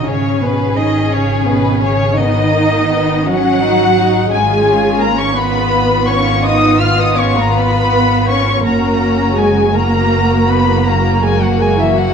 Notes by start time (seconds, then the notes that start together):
0.05 G#1 C#3 C#4 G#4 C#5
0.41 B2 B3 B4
0.77 D#3 D#4 D#5
1.10 C#3 C#4 C#5
1.46 B2 B3 B4
1.81 C#3 C#4 C#5
2.17 D#3 B3 D#4 D#5
2.53 A#3
2.89 B3
3.24 F#3 C#4 F#4 F#5
3.60 D#4
3.96 D#4
4.29 G#1 G#3 C#4 F4 G#4 G#5
4.99 A#3 A#4 A#5
5.17 C#4 C#5 C#6
5.34 B3 F4 B4 B5
6.07 C#4 C#5 C#6
6.43 D#4 D#5 D#6
6.79 F4 F5 F6
6.98 D#4 D#5 D#6
7.16 C#4 C#5 C#6
7.35 A#3 A#4 A#5
7.53 B3 B4
7.57 B5
8.28 C#4 C#5 C#6
8.64 F#1 A#3 C#4 F#4 A#4 A#5
9.37 G#3 G#4 G#5
9.73 A#3 F#4 A#4 A#5
10.49 B3 B4 B5
10.85 A#3 F#4 A#4 A#5
11.23 G#3 G#4 G#5
11.42 F#3 F#4 F#5
11.59 G#3 G#4 G#5
11.77 E3 E4 E5
11.94 F#3 F#4
11.98 F#5